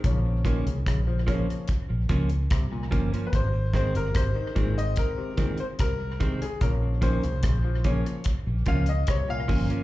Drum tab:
HH |x-xxx-xxx-xxx-xx|x-xxx-xxx-xxx-xx|x-xxx-xxx-xxx-ox|
SD |----r-------r---|--r-r-------r---|----r-------r---|
BD |o-o-o-o-o-o-o-o-|o-o-o-o-o-o-o-o-|o-o-o-o-o-o-o-o-|